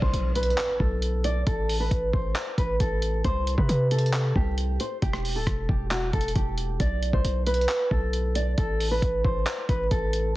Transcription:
0.00 0.13 B1 loud
0.00 0.34 C5 medium
0.00 kick loud
0.00 impact medium
0.13 0.56 B1 loud
0.13 closed hi-hat medium
0.35 0.77 B4 medium
0.35 closed hi-hat medium
0.43 closed hi-hat medium
0.50 closed hi-hat soft
0.58 clap loud
0.58 closed hi-hat medium
0.80 1.44 B1 loud
0.80 1.22 A4 medium
0.80 kick medium
1.02 closed hi-hat medium
1.24 1.41 D5 medium
1.24 closed hi-hat medium
1.47 1.89 A1 loud
1.47 1.78 A4 loud
1.47 kick loud
1.47 closed hi-hat medium
1.69 open hi-hat medium
1.80 2.11 B4 medium
1.91 2.12 A1 loud
1.91 kick loud
1.91 closed hi-hat medium
2.13 2.35 A1 loud
2.13 2.55 C5 medium
2.13 kick loud
2.36 clap loud
2.36 closed hi-hat medium
2.58 2.79 A1 loud
2.58 2.75 B4 medium
2.58 kick medium
2.58 closed hi-hat medium
2.80 3.23 A1 loud
2.80 3.22 A4 medium
2.80 kick loud
2.80 closed hi-hat medium
3.02 closed hi-hat medium
3.24 3.56 C2 loud
3.24 3.56 C5 loud
3.24 kick loud
3.24 closed hi-hat medium
3.47 closed hi-hat medium
3.58 3.68 C3 loud
3.58 3.89 B4 medium
3.58 kick medium
3.69 4.33 C3 loud
3.69 closed hi-hat medium
3.91 4.33 A4 medium
3.91 closed hi-hat medium
3.99 closed hi-hat medium
4.06 closed hi-hat soft
4.13 clap loud
4.13 closed hi-hat medium
4.36 4.78 C2 loud
4.36 4.77 G4 medium
4.36 kick medium
4.58 closed hi-hat medium
4.80 4.97 C5 medium
4.80 closed hi-hat medium
5.02 5.37 E1 loud
5.02 5.34 G4 loud
5.02 kick loud
5.02 closed hi-hat medium
5.13 cross-stick medium
5.25 open hi-hat medium
5.36 5.46 D1 loud
5.36 5.67 A4 medium
5.47 5.68 E1 loud
5.47 kick loud
5.47 cross-stick medium
5.47 closed hi-hat medium
5.69 6.12 E1 loud
5.69 5.86 G4 medium
5.69 kick loud
5.91 6.08 F#4 medium
5.91 clap loud
5.91 closed hi-hat medium
6.13 6.35 E1 loud
6.13 6.30 A4 medium
6.13 kick medium
6.13 closed hi-hat soft
6.21 closed hi-hat medium
6.28 closed hi-hat medium
6.35 6.78 E1 loud
6.35 6.77 G4 medium
6.35 kick loud
6.35 closed hi-hat medium
6.58 closed hi-hat medium
6.80 7.12 B1 loud
6.80 7.11 D5 loud
6.80 kick loud
6.80 closed hi-hat medium
7.03 closed hi-hat medium
7.13 7.24 B1 loud
7.13 7.45 C5 medium
7.13 kick medium
7.24 7.67 B1 loud
7.24 closed hi-hat medium
7.47 7.88 B4 medium
7.47 closed hi-hat medium
7.54 closed hi-hat medium
7.61 closed hi-hat soft
7.69 clap loud
7.69 closed hi-hat medium
7.91 8.55 B1 loud
7.91 8.33 A4 medium
7.91 kick medium
8.13 closed hi-hat medium
8.35 8.52 D5 medium
8.35 closed hi-hat medium
8.58 9.00 A1 loud
8.58 8.89 A4 loud
8.58 kick loud
8.58 closed hi-hat medium
8.80 open hi-hat medium
8.91 9.22 B4 medium
9.02 9.24 A1 loud
9.02 kick loud
9.02 closed hi-hat medium
9.24 9.46 A1 loud
9.24 9.66 C5 medium
9.24 kick loud
9.47 clap loud
9.47 closed hi-hat medium
9.69 9.90 A1 loud
9.69 9.86 B4 medium
9.69 kick medium
9.69 closed hi-hat medium
9.91 10.34 A1 loud
9.91 10.33 A4 medium
9.91 kick loud
9.91 closed hi-hat medium
10.13 closed hi-hat medium

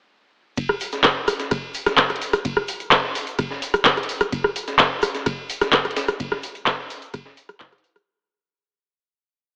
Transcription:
0.57 kick loud
0.57 closed hi-hat medium
0.57 ride medium
0.57 tambourine medium
0.57 shaker soft
0.69 cross-stick medium
0.80 open hi-hat loud
0.80 tambourine medium
0.80 shaker medium
0.92 snare medium
0.92 closed hi-hat medium
0.92 shaker medium
1.04 kick loud
1.04 cross-stick soft
1.04 snare loud
1.04 clap loud
1.04 closed hi-hat medium
1.04 ride medium
1.04 tambourine medium
1.04 shaker soft
1.28 cross-stick medium
1.28 open hi-hat loud
1.28 tambourine medium
1.28 shaker medium
1.40 snare soft
1.40 closed hi-hat medium
1.40 shaker medium
1.51 kick loud
1.51 cross-stick soft
1.51 closed hi-hat medium
1.51 ride medium
1.51 tambourine medium
1.51 shaker soft
1.74 open hi-hat loud
1.74 tambourine medium
1.74 shaker medium
1.86 cross-stick medium
1.86 snare medium
1.86 closed hi-hat medium
1.86 shaker soft
1.98 kick loud
1.98 snare loud
1.98 clap loud
1.98 closed hi-hat medium
1.98 ride medium
1.98 tambourine medium
1.98 shaker soft
2.10 cross-stick soft
2.10 closed hi-hat soft
2.16 closed hi-hat medium
2.21 open hi-hat loud
2.21 tambourine medium
2.21 shaker medium
2.33 cross-stick medium
2.33 closed hi-hat soft
2.33 closed hi-hat medium
2.33 shaker soft
2.45 kick loud
2.45 closed hi-hat medium
2.45 ride medium
2.45 tambourine medium
2.45 shaker soft
2.57 cross-stick medium
2.68 open hi-hat loud
2.68 tambourine medium
2.68 shaker medium
2.80 closed hi-hat medium
2.80 shaker medium
2.91 kick loud
2.91 cross-stick soft
2.91 snare loud
2.91 clap loud
2.91 closed hi-hat medium
2.91 ride medium
2.91 tambourine medium
2.91 shaker soft
3.04 snare soft
3.15 open hi-hat medium
3.15 open hi-hat loud
3.15 shaker medium
3.27 closed hi-hat medium
3.27 shaker medium
3.39 kick loud
3.39 cross-stick soft
3.39 closed hi-hat medium
3.39 ride medium
3.39 tambourine medium
3.39 shaker soft
3.50 snare soft
3.62 open hi-hat loud
3.62 tambourine medium
3.62 shaker loud
3.74 cross-stick medium
3.74 closed hi-hat medium
3.74 shaker medium
3.85 kick loud
3.85 snare loud
3.85 clap loud
3.85 closed hi-hat medium
3.85 ride medium
3.85 tambourine medium
3.85 shaker soft
3.97 cross-stick soft
3.97 closed hi-hat soft
4.03 closed hi-hat medium
4.09 open hi-hat loud
4.09 tambourine medium
4.09 shaker medium
4.21 cross-stick medium
4.21 closed hi-hat medium
4.21 shaker medium
4.32 kick loud
4.32 closed hi-hat medium
4.32 ride medium
4.32 tambourine medium
4.32 shaker soft
4.44 cross-stick medium
4.56 open hi-hat loud
4.56 tambourine medium
4.56 shaker medium
4.67 snare soft
4.67 closed hi-hat soft
4.67 shaker medium
4.79 kick loud
4.79 cross-stick soft
4.79 snare loud
4.79 clap loud
4.79 closed hi-hat medium
4.79 ride medium
4.79 tambourine medium
4.79 shaker soft
5.02 cross-stick medium
5.02 open hi-hat loud
5.02 tambourine medium
5.02 shaker loud
5.15 snare soft
5.15 closed hi-hat medium
5.15 shaker medium
5.26 kick loud
5.26 cross-stick soft
5.26 closed hi-hat medium
5.26 ride medium
5.26 tambourine medium
5.26 shaker soft
5.50 open hi-hat loud
5.50 tambourine medium
5.50 shaker loud
5.61 cross-stick medium
5.61 snare medium
5.61 closed hi-hat medium
5.61 shaker medium
5.73 kick loud
5.73 snare loud
5.73 clap loud
5.73 closed hi-hat medium
5.73 ride medium
5.73 tambourine medium
5.73 shaker soft
5.85 cross-stick soft
5.85 closed hi-hat soft
5.91 closed hi-hat medium
5.96 snare loud
5.96 open hi-hat loud
5.96 tambourine medium
5.96 shaker loud
6.08 cross-stick medium
6.08 closed hi-hat medium
6.08 shaker medium
6.19 kick loud
6.19 closed hi-hat medium
6.19 ride medium
6.19 tambourine medium
6.19 shaker soft
6.32 cross-stick medium
6.32 snare soft
6.43 open hi-hat loud
6.43 tambourine medium
6.43 shaker loud
6.55 closed hi-hat soft
6.55 shaker medium
6.66 kick loud
6.66 cross-stick soft
6.66 snare loud
6.66 clap loud
6.66 closed hi-hat medium
6.66 ride medium
6.66 tambourine medium
6.66 shaker soft
6.79 snare soft
6.90 open hi-hat loud
6.90 open hi-hat medium
6.90 shaker medium
7.02 closed hi-hat medium
7.02 shaker medium
7.14 kick loud
7.14 cross-stick soft
7.14 closed hi-hat medium
7.14 ride medium
7.14 tambourine medium
7.14 shaker soft
7.25 snare soft
7.37 open hi-hat loud
7.37 tambourine medium
7.37 shaker loud
7.49 cross-stick medium
7.49 closed hi-hat medium
7.49 shaker medium
7.60 kick loud
7.60 snare loud
7.60 clap loud
7.60 closed hi-hat medium
7.60 ride medium
7.60 tambourine medium
7.72 cross-stick soft
7.72 closed hi-hat soft
7.78 closed hi-hat medium
7.84 open hi-hat loud
7.84 tambourine medium
7.84 shaker medium
7.96 cross-stick medium
7.96 closed hi-hat medium
7.96 shaker medium

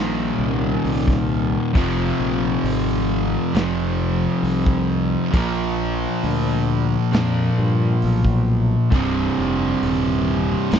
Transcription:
0.00 0.31 A#1 medium
0.00 1.71 D#2 medium
0.00 1.72 A#2 medium
0.00 1.72 A#2 loud
0.00 1.72 D#3 medium
0.00 1.73 D#3 loud
0.38 0.75 C2 loud
0.84 1.56 C2 medium
0.84 open hi-hat medium
1.08 kick medium
1.08 snare soft
1.74 2.11 F1 loud
1.74 3.51 F2 medium
1.74 3.52 C3 medium
1.74 3.56 F3 medium
1.74 kick loud
1.74 open hi-hat medium
2.19 2.55 A#1 loud
2.63 3.35 G#1 loud
2.63 open hi-hat medium
3.54 4.26 F1 medium
3.54 5.30 F2 medium
3.54 5.31 C3 medium
3.54 5.32 F3 medium
3.54 snare loud
3.54 open hi-hat medium
4.43 5.15 C2 medium
4.43 open hi-hat medium
4.66 kick loud
5.32 6.05 A#1 loud
5.32 7.09 A#2 medium
5.32 7.10 F3 loud
5.32 7.11 A#3 loud
5.32 kick loud
5.32 open hi-hat medium
6.23 6.95 D2 medium
6.23 open hi-hat medium
7.12 7.49 F2 medium
7.12 8.89 A#2 medium
7.12 8.90 F3 medium
7.12 8.90 A#3 medium
7.12 snare loud
7.12 open hi-hat medium
7.58 7.94 G2 medium
8.02 8.75 B1 loud
8.02 open hi-hat medium
8.25 kick medium
8.91 9.28 C1 loud
8.91 10.68 C2 medium
8.91 10.69 G2 medium
8.91 10.70 C3 loud
8.91 kick loud
8.91 open hi-hat medium
9.38 9.73 F1 medium
9.82 10.54 D#1 loud
9.82 open hi-hat medium
10.71 10.79 C1 medium
10.71 10.79 C2 medium
10.71 10.79 G2 medium
10.71 10.79 C3 medium
10.71 snare loud
10.71 open hi-hat medium

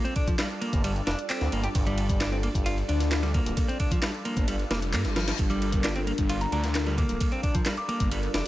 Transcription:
0.00 8.48 G3 medium
0.00 8.48 D4 medium
0.00 8.48 F4 medium
0.00 8.48 A4 medium
0.00 5.37 D5 loud
0.05 0.15 C4 loud
0.05 closed hi-hat soft
0.16 0.27 D4 medium
0.16 kick loud
0.16 ride medium
0.27 0.35 F3 loud
0.27 kick loud
0.27 closed hi-hat medium
0.39 0.46 G3 medium
0.39 snare loud
0.39 clap loud
0.39 closed hi-hat soft
0.39 ride medium
0.50 closed hi-hat soft
0.61 0.83 A#3 medium
0.61 ride medium
0.73 1.01 G1 medium
0.73 kick loud
0.73 closed hi-hat medium
0.84 0.91 G3 medium
0.84 closed hi-hat medium
0.84 ride medium
0.96 closed hi-hat soft
1.07 1.15 F1 medium
1.07 1.18 D4 medium
1.07 snare loud
1.07 ride medium
1.19 closed hi-hat medium
1.30 1.51 C4 medium
1.30 clap loud
1.30 closed hi-hat medium
1.30 open hi-hat medium
1.41 1.49 D2 medium
1.41 snare soft
1.41 closed hi-hat soft
1.52 1.68 G1 medium
1.52 1.63 A#3 medium
1.52 ride medium
1.64 1.68 G4 medium
1.64 closed hi-hat medium
1.75 2.48 G1 loud
1.75 kick loud
1.75 closed hi-hat medium
1.75 ride loud
1.87 2.19 G3 medium
1.87 closed hi-hat soft
1.87 ride soft
1.98 ride medium
2.09 kick loud
2.09 closed hi-hat medium
2.20 2.31 D4 medium
2.20 snare loud
2.20 clap loud
2.20 closed hi-hat medium
2.20 ride medium
2.32 2.36 C4 loud
2.32 closed hi-hat soft
2.43 2.48 A#3 medium
2.43 ride medium
2.55 2.83 G1 medium
2.55 kick loud
2.55 closed hi-hat medium
2.66 2.77 F4 loud
2.66 closed hi-hat medium
2.66 ride medium
2.78 closed hi-hat soft
2.89 3.40 D2 medium
2.89 2.99 D4 medium
2.89 ride medium
3.00 snare soft
3.00 closed hi-hat medium
3.11 snare loud
3.11 clap loud
3.11 closed hi-hat medium
3.11 ride medium
3.23 3.33 G3 medium
3.23 snare soft
3.23 closed hi-hat soft
3.34 3.67 A#3 medium
3.34 kick loud
3.34 ride medium
3.46 3.53 D1 medium
3.46 closed hi-hat medium
3.57 kick loud
3.57 closed hi-hat medium
3.57 ride medium
3.68 3.79 C4 loud
3.68 closed hi-hat soft
3.80 3.91 D4 medium
3.80 kick loud
3.80 ride medium
3.91 3.98 F3 loud
3.91 kick loud
3.91 closed hi-hat medium
4.02 4.10 G3 medium
4.02 snare loud
4.02 clap loud
4.02 closed hi-hat medium
4.02 ride medium
4.14 closed hi-hat soft
4.25 4.47 A#3 medium
4.25 ride medium
4.37 4.64 G1 medium
4.37 kick loud
4.37 closed hi-hat medium
4.48 4.55 G3 medium
4.48 closed hi-hat medium
4.48 ride medium
4.48 reverse cymbal medium
4.59 closed hi-hat soft
4.70 4.95 F1 medium
4.70 4.78 A#3 loud
4.70 snare loud
4.70 ride medium
4.82 closed hi-hat medium
4.93 5.06 G2 loud
4.93 5.01 A#3 loud
4.93 clap loud
4.93 closed hi-hat medium
4.93 open hi-hat medium
5.05 5.33 G1 medium
5.05 snare soft
5.05 closed hi-hat soft
5.16 5.26 F3 medium
5.16 snare loud
5.16 ride medium
5.28 5.32 F3 medium
5.28 snare loud
5.28 closed hi-hat medium
5.28 ride medium
5.38 6.12 G1 loud
5.38 8.48 A#4 medium
5.38 kick loud
5.38 closed hi-hat medium
5.38 ride medium
5.50 5.83 G3 medium
5.50 closed hi-hat soft
5.50 ride soft
5.62 ride medium
5.72 kick loud
5.72 closed hi-hat medium
5.84 5.94 D4 medium
5.84 snare loud
5.84 clap loud
5.84 closed hi-hat medium
5.84 ride medium
5.96 6.00 C4 loud
5.96 closed hi-hat soft
6.07 6.11 A#3 medium
6.07 ride medium
6.18 6.46 G1 medium
6.18 kick medium
6.18 closed hi-hat medium
6.29 6.40 F4 loud
6.29 closed hi-hat medium
6.29 ride medium
6.41 6.48 A#5 medium
6.41 closed hi-hat soft
6.52 7.03 D2 loud
6.52 6.63 D4 medium
6.52 6.60 A#5 medium
6.52 ride medium
6.64 snare soft
6.64 closed hi-hat medium
6.75 snare loud
6.75 clap loud
6.75 closed hi-hat medium
6.75 ride medium
6.86 6.97 G3 medium
6.86 snare soft
6.86 closed hi-hat soft
6.98 7.31 A#3 medium
6.98 kick medium
6.98 ride medium
7.09 7.17 D1 medium
7.09 closed hi-hat medium
7.20 kick loud
7.20 closed hi-hat medium
7.20 ride medium
7.32 7.42 C4 loud
7.32 closed hi-hat soft
7.43 7.54 D4 medium
7.43 kick loud
7.43 ride medium
7.55 7.62 F3 loud
7.55 kick loud
7.55 closed hi-hat medium
7.66 7.73 G3 medium
7.66 snare loud
7.66 clap loud
7.66 closed hi-hat medium
7.66 ride medium
7.77 7.85 D6 medium
7.77 closed hi-hat soft
7.89 8.10 A#3 medium
7.89 7.96 D6 medium
7.89 ride medium
8.00 8.28 G1 medium
8.00 kick loud
8.00 closed hi-hat medium
8.11 8.19 G3 medium
8.11 closed hi-hat medium
8.11 ride medium
8.23 closed hi-hat soft
8.34 8.42 F1 medium
8.34 8.45 D4 medium
8.34 snare loud
8.34 ride medium

